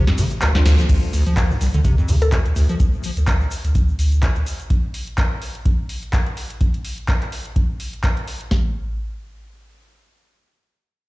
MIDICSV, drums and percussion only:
0, 0, Header, 1, 2, 480
1, 0, Start_track
1, 0, Key_signature, -1, "minor"
1, 0, Tempo, 476190
1, 900, Time_signature, 4, 2, 24, 8
1, 11173, End_track
2, 0, Start_track
2, 0, Title_t, "Drums"
2, 74, Note_on_c, 9, 38, 63
2, 74, Note_on_c, 9, 42, 39
2, 175, Note_off_c, 9, 38, 0
2, 175, Note_off_c, 9, 42, 0
2, 178, Note_on_c, 9, 82, 102
2, 180, Note_on_c, 9, 46, 109
2, 180, Note_on_c, 9, 51, 84
2, 279, Note_off_c, 9, 82, 0
2, 281, Note_off_c, 9, 46, 0
2, 281, Note_off_c, 9, 51, 0
2, 301, Note_on_c, 9, 82, 52
2, 314, Note_on_c, 9, 42, 54
2, 402, Note_off_c, 9, 82, 0
2, 415, Note_off_c, 9, 42, 0
2, 418, Note_on_c, 9, 82, 42
2, 420, Note_on_c, 9, 42, 85
2, 421, Note_on_c, 9, 39, 122
2, 519, Note_off_c, 9, 82, 0
2, 521, Note_off_c, 9, 39, 0
2, 521, Note_off_c, 9, 42, 0
2, 555, Note_on_c, 9, 38, 80
2, 555, Note_on_c, 9, 42, 40
2, 656, Note_off_c, 9, 38, 0
2, 656, Note_off_c, 9, 42, 0
2, 661, Note_on_c, 9, 38, 96
2, 661, Note_on_c, 9, 46, 92
2, 661, Note_on_c, 9, 51, 82
2, 666, Note_on_c, 9, 82, 80
2, 762, Note_off_c, 9, 38, 0
2, 762, Note_off_c, 9, 46, 0
2, 762, Note_off_c, 9, 51, 0
2, 767, Note_off_c, 9, 82, 0
2, 795, Note_on_c, 9, 42, 58
2, 795, Note_on_c, 9, 82, 53
2, 895, Note_off_c, 9, 82, 0
2, 896, Note_off_c, 9, 42, 0
2, 897, Note_on_c, 9, 82, 53
2, 900, Note_on_c, 9, 36, 113
2, 900, Note_on_c, 9, 42, 78
2, 900, Note_on_c, 9, 49, 85
2, 998, Note_off_c, 9, 82, 0
2, 1001, Note_off_c, 9, 36, 0
2, 1001, Note_off_c, 9, 42, 0
2, 1001, Note_off_c, 9, 49, 0
2, 1041, Note_on_c, 9, 82, 25
2, 1140, Note_off_c, 9, 82, 0
2, 1140, Note_on_c, 9, 82, 87
2, 1141, Note_on_c, 9, 46, 106
2, 1241, Note_off_c, 9, 82, 0
2, 1242, Note_off_c, 9, 46, 0
2, 1275, Note_on_c, 9, 42, 53
2, 1277, Note_on_c, 9, 82, 37
2, 1376, Note_off_c, 9, 42, 0
2, 1377, Note_off_c, 9, 82, 0
2, 1381, Note_on_c, 9, 36, 109
2, 1381, Note_on_c, 9, 39, 120
2, 1381, Note_on_c, 9, 42, 77
2, 1383, Note_on_c, 9, 82, 49
2, 1481, Note_off_c, 9, 36, 0
2, 1482, Note_off_c, 9, 39, 0
2, 1482, Note_off_c, 9, 42, 0
2, 1483, Note_off_c, 9, 82, 0
2, 1519, Note_on_c, 9, 82, 24
2, 1620, Note_off_c, 9, 82, 0
2, 1621, Note_on_c, 9, 46, 86
2, 1623, Note_on_c, 9, 82, 87
2, 1722, Note_off_c, 9, 46, 0
2, 1724, Note_off_c, 9, 82, 0
2, 1755, Note_on_c, 9, 42, 52
2, 1758, Note_on_c, 9, 82, 41
2, 1856, Note_off_c, 9, 42, 0
2, 1858, Note_off_c, 9, 82, 0
2, 1858, Note_on_c, 9, 82, 49
2, 1860, Note_on_c, 9, 36, 118
2, 1861, Note_on_c, 9, 42, 81
2, 1959, Note_off_c, 9, 82, 0
2, 1961, Note_off_c, 9, 36, 0
2, 1962, Note_off_c, 9, 42, 0
2, 1998, Note_on_c, 9, 82, 25
2, 2099, Note_off_c, 9, 82, 0
2, 2100, Note_on_c, 9, 46, 104
2, 2100, Note_on_c, 9, 82, 91
2, 2200, Note_off_c, 9, 82, 0
2, 2201, Note_off_c, 9, 46, 0
2, 2235, Note_on_c, 9, 82, 35
2, 2236, Note_on_c, 9, 42, 54
2, 2336, Note_off_c, 9, 82, 0
2, 2337, Note_off_c, 9, 42, 0
2, 2339, Note_on_c, 9, 82, 46
2, 2340, Note_on_c, 9, 42, 74
2, 2341, Note_on_c, 9, 36, 104
2, 2341, Note_on_c, 9, 39, 121
2, 2440, Note_off_c, 9, 82, 0
2, 2441, Note_off_c, 9, 36, 0
2, 2441, Note_off_c, 9, 42, 0
2, 2442, Note_off_c, 9, 39, 0
2, 2475, Note_on_c, 9, 42, 37
2, 2475, Note_on_c, 9, 82, 24
2, 2576, Note_off_c, 9, 42, 0
2, 2576, Note_off_c, 9, 82, 0
2, 2580, Note_on_c, 9, 82, 77
2, 2581, Note_on_c, 9, 46, 83
2, 2681, Note_off_c, 9, 82, 0
2, 2682, Note_off_c, 9, 46, 0
2, 2715, Note_on_c, 9, 42, 52
2, 2716, Note_on_c, 9, 82, 36
2, 2816, Note_off_c, 9, 42, 0
2, 2817, Note_off_c, 9, 82, 0
2, 2821, Note_on_c, 9, 36, 122
2, 2821, Note_on_c, 9, 42, 78
2, 2821, Note_on_c, 9, 82, 56
2, 2921, Note_off_c, 9, 36, 0
2, 2922, Note_off_c, 9, 42, 0
2, 2922, Note_off_c, 9, 82, 0
2, 2955, Note_on_c, 9, 82, 23
2, 3056, Note_off_c, 9, 82, 0
2, 3060, Note_on_c, 9, 46, 105
2, 3060, Note_on_c, 9, 82, 85
2, 3160, Note_off_c, 9, 82, 0
2, 3161, Note_off_c, 9, 46, 0
2, 3196, Note_on_c, 9, 42, 51
2, 3197, Note_on_c, 9, 82, 39
2, 3296, Note_off_c, 9, 82, 0
2, 3296, Note_on_c, 9, 82, 51
2, 3297, Note_off_c, 9, 42, 0
2, 3301, Note_on_c, 9, 36, 105
2, 3301, Note_on_c, 9, 39, 113
2, 3301, Note_on_c, 9, 42, 75
2, 3397, Note_off_c, 9, 82, 0
2, 3402, Note_off_c, 9, 36, 0
2, 3402, Note_off_c, 9, 39, 0
2, 3402, Note_off_c, 9, 42, 0
2, 3434, Note_on_c, 9, 82, 25
2, 3535, Note_off_c, 9, 82, 0
2, 3540, Note_on_c, 9, 82, 96
2, 3541, Note_on_c, 9, 46, 87
2, 3640, Note_off_c, 9, 82, 0
2, 3642, Note_off_c, 9, 46, 0
2, 3674, Note_on_c, 9, 82, 42
2, 3675, Note_on_c, 9, 42, 51
2, 3775, Note_off_c, 9, 42, 0
2, 3775, Note_off_c, 9, 82, 0
2, 3779, Note_on_c, 9, 82, 48
2, 3781, Note_on_c, 9, 36, 115
2, 3781, Note_on_c, 9, 42, 76
2, 3879, Note_off_c, 9, 82, 0
2, 3881, Note_off_c, 9, 36, 0
2, 3882, Note_off_c, 9, 42, 0
2, 3914, Note_on_c, 9, 82, 28
2, 4015, Note_off_c, 9, 82, 0
2, 4021, Note_on_c, 9, 46, 104
2, 4028, Note_on_c, 9, 82, 88
2, 4122, Note_off_c, 9, 46, 0
2, 4129, Note_off_c, 9, 82, 0
2, 4155, Note_on_c, 9, 42, 50
2, 4163, Note_on_c, 9, 82, 41
2, 4256, Note_off_c, 9, 42, 0
2, 4256, Note_off_c, 9, 82, 0
2, 4256, Note_on_c, 9, 82, 47
2, 4261, Note_on_c, 9, 36, 106
2, 4261, Note_on_c, 9, 39, 115
2, 4261, Note_on_c, 9, 42, 74
2, 4357, Note_off_c, 9, 82, 0
2, 4361, Note_off_c, 9, 36, 0
2, 4362, Note_off_c, 9, 39, 0
2, 4362, Note_off_c, 9, 42, 0
2, 4391, Note_on_c, 9, 82, 26
2, 4394, Note_on_c, 9, 42, 34
2, 4492, Note_off_c, 9, 82, 0
2, 4495, Note_off_c, 9, 42, 0
2, 4500, Note_on_c, 9, 46, 89
2, 4503, Note_on_c, 9, 82, 89
2, 4601, Note_off_c, 9, 46, 0
2, 4604, Note_off_c, 9, 82, 0
2, 4634, Note_on_c, 9, 42, 49
2, 4637, Note_on_c, 9, 82, 34
2, 4735, Note_off_c, 9, 42, 0
2, 4738, Note_off_c, 9, 82, 0
2, 4740, Note_on_c, 9, 42, 73
2, 4741, Note_on_c, 9, 36, 118
2, 4841, Note_off_c, 9, 36, 0
2, 4841, Note_off_c, 9, 42, 0
2, 4980, Note_on_c, 9, 46, 107
2, 5081, Note_off_c, 9, 46, 0
2, 5115, Note_on_c, 9, 42, 49
2, 5216, Note_off_c, 9, 42, 0
2, 5221, Note_on_c, 9, 36, 108
2, 5221, Note_on_c, 9, 39, 110
2, 5221, Note_on_c, 9, 42, 71
2, 5321, Note_off_c, 9, 36, 0
2, 5322, Note_off_c, 9, 39, 0
2, 5322, Note_off_c, 9, 42, 0
2, 5460, Note_on_c, 9, 46, 91
2, 5561, Note_off_c, 9, 46, 0
2, 5595, Note_on_c, 9, 42, 51
2, 5695, Note_off_c, 9, 42, 0
2, 5700, Note_on_c, 9, 42, 73
2, 5701, Note_on_c, 9, 36, 124
2, 5801, Note_off_c, 9, 36, 0
2, 5801, Note_off_c, 9, 42, 0
2, 5940, Note_on_c, 9, 46, 102
2, 6040, Note_off_c, 9, 46, 0
2, 6075, Note_on_c, 9, 42, 46
2, 6176, Note_off_c, 9, 42, 0
2, 6180, Note_on_c, 9, 42, 70
2, 6181, Note_on_c, 9, 36, 103
2, 6181, Note_on_c, 9, 39, 108
2, 6281, Note_off_c, 9, 36, 0
2, 6281, Note_off_c, 9, 42, 0
2, 6282, Note_off_c, 9, 39, 0
2, 6315, Note_on_c, 9, 42, 35
2, 6416, Note_off_c, 9, 42, 0
2, 6420, Note_on_c, 9, 46, 87
2, 6521, Note_off_c, 9, 46, 0
2, 6555, Note_on_c, 9, 42, 49
2, 6656, Note_off_c, 9, 42, 0
2, 6660, Note_on_c, 9, 42, 70
2, 6661, Note_on_c, 9, 36, 114
2, 6760, Note_off_c, 9, 42, 0
2, 6761, Note_off_c, 9, 36, 0
2, 6795, Note_on_c, 9, 42, 33
2, 6895, Note_off_c, 9, 42, 0
2, 6901, Note_on_c, 9, 46, 108
2, 7001, Note_off_c, 9, 46, 0
2, 7035, Note_on_c, 9, 42, 46
2, 7136, Note_off_c, 9, 42, 0
2, 7140, Note_on_c, 9, 36, 101
2, 7141, Note_on_c, 9, 39, 104
2, 7141, Note_on_c, 9, 42, 64
2, 7241, Note_off_c, 9, 36, 0
2, 7242, Note_off_c, 9, 39, 0
2, 7242, Note_off_c, 9, 42, 0
2, 7275, Note_on_c, 9, 39, 33
2, 7275, Note_on_c, 9, 42, 31
2, 7376, Note_off_c, 9, 39, 0
2, 7376, Note_off_c, 9, 42, 0
2, 7381, Note_on_c, 9, 46, 87
2, 7481, Note_off_c, 9, 46, 0
2, 7515, Note_on_c, 9, 42, 47
2, 7615, Note_off_c, 9, 42, 0
2, 7621, Note_on_c, 9, 36, 110
2, 7621, Note_on_c, 9, 42, 69
2, 7721, Note_off_c, 9, 36, 0
2, 7722, Note_off_c, 9, 42, 0
2, 7861, Note_on_c, 9, 46, 102
2, 7962, Note_off_c, 9, 46, 0
2, 7996, Note_on_c, 9, 42, 45
2, 8097, Note_off_c, 9, 42, 0
2, 8100, Note_on_c, 9, 36, 98
2, 8101, Note_on_c, 9, 39, 106
2, 8101, Note_on_c, 9, 42, 67
2, 8201, Note_off_c, 9, 36, 0
2, 8202, Note_off_c, 9, 39, 0
2, 8202, Note_off_c, 9, 42, 0
2, 8235, Note_on_c, 9, 42, 33
2, 8336, Note_off_c, 9, 42, 0
2, 8341, Note_on_c, 9, 46, 86
2, 8442, Note_off_c, 9, 46, 0
2, 8475, Note_on_c, 9, 42, 45
2, 8576, Note_off_c, 9, 42, 0
2, 8579, Note_on_c, 9, 38, 100
2, 8580, Note_on_c, 9, 36, 96
2, 8680, Note_off_c, 9, 38, 0
2, 8681, Note_off_c, 9, 36, 0
2, 11173, End_track
0, 0, End_of_file